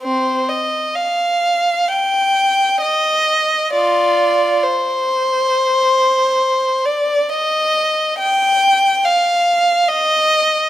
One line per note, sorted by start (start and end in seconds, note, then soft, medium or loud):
0.02 0.46 C4 soft
0.02 0.46 C5 medium
0.49 0.96 D#5 soft
0.95 1.89 F5 medium
1.88 2.83 G5 medium
2.81 3.71 D#5 medium
3.73 4.59 F4 soft
3.73 4.62 D5 medium
4.64 6.85 C5 medium
6.85 7.29 D5 medium
7.29 8.18 D#5 medium
8.18 9.03 G5 medium
9.05 9.89 F5 medium
9.88 10.69 D#5 medium